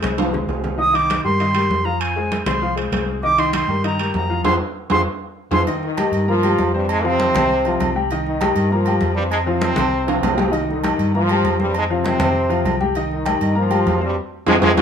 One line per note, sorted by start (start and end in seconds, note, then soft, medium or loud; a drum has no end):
0.02 0.46 C2 loud
0.02 0.15 G#3 medium
0.02 0.15 G#4 medium
0.02 0.15 C5 medium
0.02 high conga loud
0.02 high timbale medium
0.18 0.30 F3 medium
0.18 0.31 F4 medium
0.18 0.31 F5 medium
0.18 high conga medium
0.18 high timbale medium
0.33 0.46 G#3 medium
0.33 0.46 G#4 medium
0.33 0.46 C5 medium
0.33 low conga medium
0.48 1.19 C2 loud
0.48 0.74 G#3 medium
0.48 0.74 G#4 medium
0.48 0.74 C5 medium
0.48 low timbale medium
0.64 low conga medium
0.64 low timbale medium
0.78 0.91 D#3 medium
0.78 0.91 D#4 medium
0.78 0.91 D#5 medium
0.78 0.97 D#6 loud
0.78 high conga soft
0.93 1.19 D#3 medium
0.93 1.19 D#4 medium
0.93 1.19 D#5 medium
0.93 1.24 D6 loud
0.93 high conga soft
0.93 high timbale medium
1.10 high conga medium
1.10 high timbale medium
1.24 1.67 G2 loud
1.24 1.37 G3 medium
1.24 1.37 G4 medium
1.24 1.38 A#4 medium
1.24 1.86 C6 loud
1.24 high conga soft
1.40 1.52 D#3 medium
1.40 1.53 D#4 medium
1.40 1.53 D#5 medium
1.40 high conga soft
1.40 high timbale medium
1.55 1.80 G3 medium
1.55 1.80 G4 medium
1.55 1.81 A#4 medium
1.55 high conga soft
1.55 high timbale medium
1.70 2.41 F2 loud
1.70 high conga medium
1.85 2.11 F3 medium
1.85 2.10 F4 medium
1.85 2.11 F5 medium
1.85 2.02 A#5 medium
2.00 2.45 G#5 medium
2.00 high conga soft
2.00 high timbale loud
2.16 2.41 G#3 medium
2.16 2.42 G#4 medium
2.16 2.42 C5 medium
2.16 high conga soft
2.32 high conga medium
2.32 high timbale medium
2.46 2.89 C2 medium
2.46 2.59 G#3 medium
2.46 2.59 G#4 medium
2.46 2.60 C5 medium
2.46 2.75 C6 medium
2.46 high conga loud
2.46 low conga medium
2.46 high timbale loud
2.62 2.74 F3 medium
2.62 2.75 F4 medium
2.62 2.75 F5 medium
2.62 high conga soft
2.76 2.89 G#3 medium
2.76 2.89 G#4 medium
2.76 2.89 C5 medium
2.76 high conga soft
2.76 high timbale medium
2.92 3.63 C2 loud
2.92 3.17 G#3 medium
2.92 3.18 G#4 medium
2.92 3.18 C5 medium
2.92 high conga medium
2.92 high timbale medium
2.92 low timbale medium
3.23 3.36 D#3 medium
3.23 3.36 D#4 medium
3.23 3.36 D#5 medium
3.23 3.41 D6 loud
3.23 high conga soft
3.38 3.63 D#3 medium
3.38 3.63 D#4 medium
3.38 3.64 D#5 medium
3.38 3.54 C6 loud
3.38 high conga soft
3.38 high timbale medium
3.53 3.83 C6 medium
3.53 high conga medium
3.53 high timbale loud
3.68 4.11 G2 medium
3.68 3.81 G3 medium
3.68 3.81 G4 medium
3.68 3.82 A#4 medium
3.68 high conga soft
3.84 3.97 D#3 medium
3.84 3.97 D#4 medium
3.84 3.97 D#5 medium
3.84 4.14 A#5 loud
3.84 high conga soft
3.84 high timbale medium
3.99 4.25 G3 medium
3.99 4.25 G4 medium
3.99 4.25 A#4 medium
3.99 high conga soft
3.99 high timbale medium
4.14 4.43 F2 loud
4.14 4.44 A#5 medium
4.14 high conga medium
4.14 low timbale medium
4.30 4.42 F3 medium
4.30 4.43 F4 medium
4.30 4.42 F5 medium
4.44 4.56 F2 medium
4.44 4.55 F4 loud
4.44 4.55 G#4 loud
4.44 4.55 C5 loud
4.44 4.55 C6 loud
4.44 high conga medium
4.44 high timbale loud
4.90 5.02 F2 loud
4.90 5.01 F4 medium
4.90 5.01 G#4 loud
4.90 5.01 C5 loud
4.90 5.01 C6 loud
4.90 high conga loud
4.90 high timbale loud
5.51 5.63 F2 medium
5.51 5.61 F4 loud
5.51 5.61 G#4 medium
5.51 5.61 C5 loud
5.51 5.62 C6 medium
5.51 high conga loud
5.51 high timbale loud
5.67 5.92 D#3 medium
5.67 5.92 D#4 medium
5.67 5.93 D#5 medium
5.67 high conga soft
5.67 low agogo medium
5.83 6.26 D#3 medium
5.83 6.26 D#4 medium
5.83 high conga soft
5.97 6.23 G3 medium
5.97 6.23 G4 medium
5.97 6.23 G5 medium
5.97 high conga medium
5.97 low agogo loud
6.12 6.55 G2 loud
6.12 high conga soft
6.12 low agogo medium
6.28 6.71 F3 loud
6.28 6.40 A#3 medium
6.28 6.71 F4 medium
6.28 6.40 A#4 medium
6.28 6.41 A#5 medium
6.28 high conga soft
6.43 6.69 G3 medium
6.43 6.69 G4 medium
6.43 6.69 G5 medium
6.43 high conga soft
6.43 low agogo loud
6.58 7.29 F2 loud
6.58 high conga medium
6.58 low agogo medium
6.74 6.89 G2 medium
6.74 6.88 G3 loud
6.74 6.99 C4 medium
6.74 6.99 C5 medium
6.74 6.99 C6 medium
6.89 7.04 G#2 medium
6.89 7.04 G#3 loud
6.89 high conga soft
6.89 low agogo loud
7.04 7.96 C3 medium
7.04 7.29 F3 medium
7.04 7.96 C4 loud
7.04 7.29 F4 medium
7.04 7.29 F5 medium
7.04 high conga soft
7.19 high conga medium
7.19 low agogo medium
7.34 7.77 C2 loud
7.34 7.59 C4 medium
7.34 7.59 C5 medium
7.34 7.59 C6 medium
7.34 high conga loud
7.34 low conga medium
7.34 low agogo loud
7.51 high conga soft
7.65 7.90 F3 medium
7.65 7.90 F4 medium
7.65 7.90 F5 medium
7.65 high conga soft
7.65 low agogo medium
7.80 8.51 C2 loud
7.80 high conga medium
7.80 low agogo loud
7.95 8.08 G3 medium
7.95 8.08 G4 medium
7.95 8.08 G5 medium
8.11 8.36 D#3 medium
8.11 8.36 D#4 medium
8.11 8.36 D#5 medium
8.11 high conga soft
8.11 low agogo medium
8.26 8.68 D#3 medium
8.26 8.69 D#4 medium
8.26 high conga soft
8.41 8.66 G3 medium
8.41 8.66 G4 medium
8.41 8.66 G5 medium
8.41 high conga loud
8.41 low agogo loud
8.56 8.98 G2 loud
8.56 high conga soft
8.56 low agogo medium
8.70 9.16 F3 loud
8.70 8.84 A#3 medium
8.70 9.17 F4 medium
8.70 8.84 A#4 medium
8.70 8.84 A#5 medium
8.70 high conga soft
8.86 9.12 G3 medium
8.86 9.12 G4 medium
8.86 9.12 G5 medium
8.86 high conga soft
8.86 low agogo loud
9.01 9.72 F2 loud
9.01 high conga medium
9.01 low agogo medium
9.15 9.24 G2 medium
9.15 9.22 G3 loud
9.15 9.42 C4 medium
9.15 9.42 C5 medium
9.15 9.42 C6 medium
9.29 9.39 G#2 medium
9.29 9.37 G#3 loud
9.29 high conga soft
9.29 low agogo loud
9.46 10.35 C3 medium
9.46 9.72 F3 medium
9.46 10.33 C4 loud
9.46 9.72 F4 medium
9.46 9.72 F5 medium
9.46 high conga soft
9.61 high conga loud
9.61 low agogo medium
9.76 10.20 C2 loud
9.76 10.02 C4 medium
9.76 10.02 C5 medium
9.76 10.03 C6 medium
9.76 high conga loud
9.76 low conga medium
9.76 low agogo loud
9.92 high conga soft
10.07 10.32 F3 medium
10.07 10.33 F4 medium
10.07 10.33 F5 medium
10.07 high conga soft
10.07 high timbale medium
10.07 low agogo medium
10.22 10.93 C2 loud
10.22 high conga medium
10.22 low timbale loud
10.22 low agogo loud
10.37 10.50 G3 medium
10.37 10.50 G4 medium
10.37 10.50 G5 medium
10.37 high conga medium
10.37 low timbale medium
10.51 10.77 D#3 medium
10.51 10.77 D#4 medium
10.51 10.77 D#5 medium
10.51 high conga soft
10.51 low agogo medium
10.69 11.11 D#3 medium
10.69 11.11 D#4 medium
10.69 high conga soft
10.83 11.08 G3 medium
10.83 11.08 G4 medium
10.83 11.08 G5 medium
10.83 high conga loud
10.83 low agogo loud
10.99 11.41 G2 loud
10.99 high conga soft
10.99 low agogo medium
11.14 11.56 F3 loud
11.14 11.26 A#3 medium
11.14 11.56 F4 medium
11.14 11.27 A#4 medium
11.14 11.27 A#5 medium
11.14 high conga soft
11.29 11.55 G3 medium
11.29 11.55 G4 medium
11.29 11.55 G5 medium
11.29 high conga soft
11.29 low agogo loud
11.44 12.14 F2 loud
11.44 high conga medium
11.44 low agogo medium
11.59 11.75 G2 medium
11.59 11.75 G3 loud
11.59 11.84 C4 medium
11.59 11.84 C5 medium
11.59 11.84 C6 medium
11.59 high conga medium
11.74 11.84 G#2 medium
11.74 11.83 G#3 loud
11.74 high conga soft
11.74 low agogo loud
11.90 12.77 C3 medium
11.90 12.15 F3 loud
11.90 12.77 C4 loud
11.90 12.15 F4 medium
11.90 12.15 F5 medium
11.90 high conga soft
12.04 high conga loud
12.04 low agogo medium
12.20 12.62 F2 loud
12.20 12.45 C4 medium
12.20 12.45 C5 medium
12.20 12.46 C6 medium
12.20 high conga loud
12.20 low conga medium
12.20 low agogo loud
12.36 high conga soft
12.49 12.75 F3 medium
12.49 12.75 F4 loud
12.49 12.75 F5 medium
12.49 high conga soft
12.49 low agogo medium
12.65 13.35 C2 loud
12.65 high conga medium
12.65 low agogo loud
12.80 12.93 G3 medium
12.80 12.93 G4 medium
12.80 12.93 G5 medium
12.80 high conga medium
12.95 13.21 D#3 medium
12.95 13.21 D#4 medium
12.95 13.21 D#5 medium
12.95 high conga soft
12.95 low agogo medium
13.11 13.54 D#3 medium
13.11 13.54 D#4 medium
13.11 high conga soft
13.26 13.51 G3 medium
13.26 13.51 G4 medium
13.26 13.51 G5 medium
13.26 high conga medium
13.26 low agogo loud
13.41 13.83 G2 loud
13.41 high conga soft
13.41 low agogo medium
13.55 14.02 F3 loud
13.55 13.68 A#3 medium
13.55 14.03 F4 medium
13.55 13.68 A#4 medium
13.55 13.68 A#5 medium
13.55 high conga soft
13.70 13.95 G3 medium
13.70 13.96 G4 medium
13.70 13.96 G5 medium
13.70 high conga soft
13.70 low agogo loud
13.86 14.15 F2 loud
13.86 high conga medium
13.86 low timbale medium
13.86 low agogo medium
14.01 14.16 G2 medium
14.01 14.17 G3 loud
14.01 14.14 C4 medium
14.01 14.14 C5 medium
14.01 14.14 C6 medium
14.46 14.58 F2 loud
14.46 14.54 C3 loud
14.46 14.54 F3 loud
14.46 14.54 G#3 loud
14.46 14.57 C4 loud
14.46 14.57 F4 loud
14.46 14.57 G#4 loud
14.46 high conga medium
14.46 high timbale loud
14.61 14.73 F2 loud
14.61 14.70 C3 loud
14.61 14.70 F3 loud
14.61 14.70 G#3 loud
14.61 14.72 C4 loud
14.61 14.72 F4 loud
14.61 14.72 G#4 loud
14.61 high conga loud
14.61 high timbale loud
14.77 14.82 F2 loud
14.77 14.82 C4 loud
14.77 14.82 F4 loud
14.77 14.82 G#4 loud
14.77 high conga loud
14.77 high timbale loud